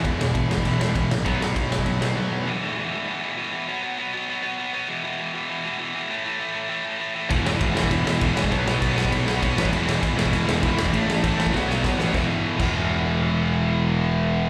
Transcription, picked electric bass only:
\new Staff \with { instrumentName = "Picked electric bass" } { \clef bass \time 4/4 \key b \mixolydian \tempo 4 = 199 e,,8 e,,8 e,,8 e,,8 e,,8 e,,8 e,,8 ais,,8 | b,,8 b,,8 b,,8 b,,8 b,,8 b,,8 r4 | r1 | r1 |
r1 | r1 | e,,4 gis,,8 e,,8 e,,8 e,,8 e,,8 e,,8 | b,,8 b,,8 b,,8 b,,8 b,,8 b,,8 b,,8 a,,8 |
e,,4 gis,,8 e,,8 e,,8 e,,8 e,,8 e,,8 | a,,8 a,,8 a,,8 a,,8 b,,8 b,,8 b,,8 a,,8 | e,,8 r4 e,,2~ e,,8~ | e,,1 | }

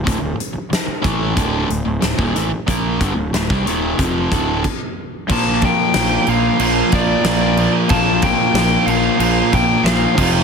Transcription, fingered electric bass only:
\new Staff \with { instrumentName = "Fingered electric bass" } { \clef bass \time 4/4 \key bes \lydian \tempo 4 = 92 d,,16 d,,16 r4 a,,8 d,,8 d,,16 d,,16 d,,16 ees,,16 a,,16 r16 | bes,,8 g,,16 d,,16 d,,16 c,16 ees,,8 f,,8 d,,8 r4 | bes,,4 bes,,8 bes,,8 bes,,8 bes,,8 bes,,4 | bes,,4 bes,,8 bes,,8 bes,,8 bes,,8 bes,,8 f,,8 | }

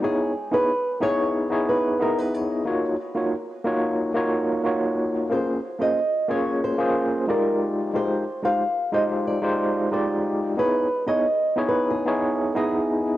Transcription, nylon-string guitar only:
\new Staff \with { instrumentName = "Nylon-string guitar" } { \time 4/4 \key des \major \tempo 4 = 91 aes'8. ces''8. des''4 ces''8 bes'16 ces''16 des''8~ | des''4. r2 r8 | c''8. ees''8. des''8 c''4 bes'8 r8 | c''8. f''8. ees''8 d''4 c''8 r8 |
ces''8. ees''16~ \tuplet 3/2 { ees''8. r16 ces''8 } aes'4 aes'4 | }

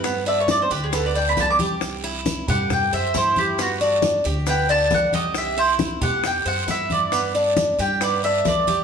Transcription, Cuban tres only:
\new Staff \with { instrumentName = "Cuban tres" } { \time 4/4 \key g \major \tempo 4 = 136 b8 d'4 g'8 b8 d'4 g'8~ | g'8 e'4 g'4 c''8 e'4 | b8 d'4 g'8 b8 d'4 g'8~ | g'8 e'4 g'4 c''8 e'4 |
b8 d'4 g'8 b8 d'4 g'8 | }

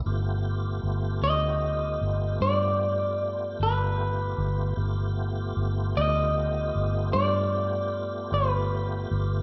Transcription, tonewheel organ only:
\new Staff \with { instrumentName = "Tonewheel organ" } { \time 12/8 \key g \dorian \tempo 4. = 51 <a b f' g'>1. | <a b f' g'>1. | }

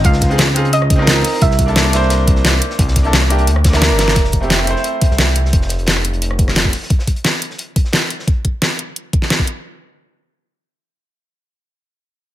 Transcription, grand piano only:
\new Staff \with { instrumentName = "Grand piano" } { \time 4/4 \key f \major \tempo 4 = 175 <c' ees' f' c''>8. <c' ees' f' aes'>16 r8 <c' ees' f' aes'>8 r8. <c' ees' f' bes'>4~ <c' ees' f' bes'>16 | r8. <bes d' e' a'>8. <bes d' e' c''>2~ <bes d' e' c''>8~ | <bes d' e' c''>8. <bes d' e' a'>16 r8 <bes d' e' g'>8 r8. <bes d' e' bes'>4~ <bes d' e' bes'>16 | r8. <a c' e' g'>8. <a c' e' c''>2~ <a c' e' c''>8~ |
<a c' e' c''>8 r2. r8 | r1 | r1 | r1 |
r1 | }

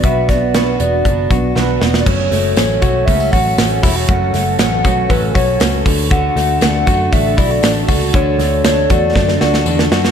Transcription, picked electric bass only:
\new Staff \with { instrumentName = "Picked electric bass" } { \clef bass \time 4/4 \key fis \phrygian \tempo 4 = 118 b,,4. e,,8 fis,,8 b,,8 b,,8 e,,8 | fis,,8 fis,,8 a,,8 b,,8 cis,8 a,,8 a,,8 e,,8 | fis,,8 fis,,8 a,,8 b,,8 a,,8 b,,8 cis,8 d,8~ | d,8 d,8 d,8 fis,8 a,,8 b,,8 a,,8 cis,8 |
d,8 d,8 d,8 e,8 fis,8 d,8 e,8 fis,8 | }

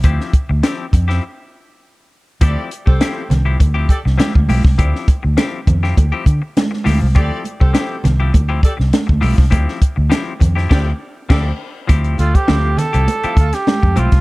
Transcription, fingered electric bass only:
\new Staff \with { instrumentName = "Fingered electric bass" } { \clef bass \time 4/4 \key d \minor \tempo 4 = 101 d,16 r8 d,16 r8 f,8 r2 | d,16 r8 c,16 r8 c,8 d,8 r16 c,16 r16 d,16 b,,16 c,16 | d,16 r8 d,16 r8 f,8 d,16 r16 d16 r8. d,16 c,16 | d,16 r8 c,16 r8 c,8 d,8 r16 c,16 r16 d,16 b,,16 c,16 |
d,16 r8 d,16 r8 f,8 d,8 r8 d,8 r8 | d,8 d,16 r16 d,8 r16 c,16 r8 d,16 r8 f,16 b,,16 c,16 | }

